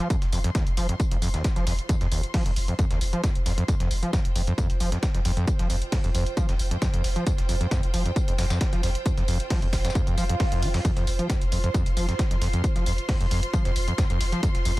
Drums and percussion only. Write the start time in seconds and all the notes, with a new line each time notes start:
0.10 kick, closed hi-hat, tambourine
0.22 snare, closed hi-hat
0.33 open hi-hat, tambourine
0.44 closed hi-hat
0.55 kick, snare, closed hi-hat, tambourine
0.67 closed hi-hat
0.77 open hi-hat, tambourine
0.89 closed hi-hat
1.00 kick, closed hi-hat, tambourine
1.11 closed hi-hat
1.22 open hi-hat, tambourine
1.34 snare, closed hi-hat
1.44 kick, snare, closed hi-hat, tambourine
1.56 snare, closed hi-hat
1.67 snare, open hi-hat, tambourine
1.79 closed hi-hat
1.89 kick, closed hi-hat, tambourine
2.01 snare, closed hi-hat
2.12 open hi-hat, tambourine
2.23 closed hi-hat
2.34 kick, snare, closed hi-hat, open hi-hat
2.46 closed hi-hat
2.56 open hi-hat, tambourine
2.68 closed hi-hat
2.79 kick, closed hi-hat, tambourine
2.91 snare, closed hi-hat
3.01 open hi-hat, tambourine
3.13 closed hi-hat
3.24 kick, snare, closed hi-hat, tambourine
3.35 closed hi-hat
3.46 snare, open hi-hat, tambourine
3.58 closed hi-hat
3.68 kick, closed hi-hat, tambourine
3.80 snare, closed hi-hat
3.91 open hi-hat, tambourine
4.03 closed hi-hat
4.13 kick, snare, closed hi-hat, tambourine
4.25 closed hi-hat
4.36 open hi-hat, tambourine
4.47 closed hi-hat
4.58 kick, closed hi-hat, tambourine
4.70 closed hi-hat
4.80 open hi-hat, tambourine
4.92 snare, closed hi-hat
5.03 kick, snare, closed hi-hat, tambourine
5.15 snare, closed hi-hat
5.25 snare, open hi-hat, tambourine
5.37 closed hi-hat
5.47 kick, closed hi-hat, tambourine
5.59 snare, closed hi-hat
5.70 open hi-hat, tambourine
5.82 closed hi-hat
5.92 kick, snare, closed hi-hat, open hi-hat
6.04 closed hi-hat
6.15 open hi-hat, tambourine
6.26 closed hi-hat
6.37 kick, closed hi-hat, tambourine
6.49 snare, closed hi-hat
6.59 open hi-hat, tambourine
6.71 closed hi-hat
6.82 kick, snare, closed hi-hat, tambourine
6.94 closed hi-hat
7.04 snare, open hi-hat, tambourine
7.16 closed hi-hat
7.27 kick, closed hi-hat, tambourine
7.38 snare, closed hi-hat
7.49 open hi-hat, tambourine
7.61 closed hi-hat
7.71 kick, snare, closed hi-hat, tambourine
7.83 closed hi-hat
7.94 open hi-hat, tambourine
8.06 closed hi-hat
8.16 kick, closed hi-hat, tambourine
8.28 closed hi-hat
8.38 snare, open hi-hat, tambourine
8.50 snare, closed hi-hat, tambourine
8.61 kick, snare, closed hi-hat, tambourine
8.73 snare, closed hi-hat
8.83 snare, open hi-hat, tambourine
8.95 closed hi-hat
9.06 kick, closed hi-hat, tambourine
9.17 snare, closed hi-hat
9.28 open hi-hat, tambourine
9.40 closed hi-hat
9.50 kick, snare, closed hi-hat, open hi-hat
9.62 closed hi-hat
9.73 kick, snare, open hi-hat, tambourine
9.85 snare, closed hi-hat, tambourine
9.90 snare, tambourine
9.95 kick, closed hi-hat, tambourine
10.07 closed hi-hat
10.18 open hi-hat, tambourine
10.29 closed hi-hat
10.40 kick, snare, closed hi-hat, open hi-hat
10.52 closed hi-hat
10.62 open hi-hat, tambourine
10.74 snare, closed hi-hat, open hi-hat
10.85 kick, closed hi-hat, tambourine
10.97 snare, closed hi-hat
11.07 open hi-hat, tambourine
11.19 closed hi-hat
11.30 kick, snare, closed hi-hat, tambourine
11.41 closed hi-hat
11.52 open hi-hat, tambourine
11.64 closed hi-hat
11.74 kick, closed hi-hat, tambourine
11.86 closed hi-hat
11.97 open hi-hat, tambourine
12.09 snare, closed hi-hat
12.19 kick, snare, closed hi-hat, tambourine
12.31 snare, closed hi-hat
12.42 snare, open hi-hat, tambourine
12.53 closed hi-hat
12.64 kick, closed hi-hat, tambourine
12.76 snare, closed hi-hat
12.86 open hi-hat, tambourine
12.98 closed hi-hat
13.09 kick, snare, closed hi-hat, open hi-hat
13.21 closed hi-hat
13.31 open hi-hat, tambourine
13.43 closed hi-hat
13.53 kick, closed hi-hat, tambourine
13.65 snare, closed hi-hat
13.76 open hi-hat, tambourine
13.88 closed hi-hat
13.98 kick, snare, closed hi-hat, tambourine
14.10 closed hi-hat
14.21 snare, open hi-hat, tambourine
14.32 closed hi-hat
14.43 kick, closed hi-hat, tambourine
14.55 snare, closed hi-hat
14.65 open hi-hat, tambourine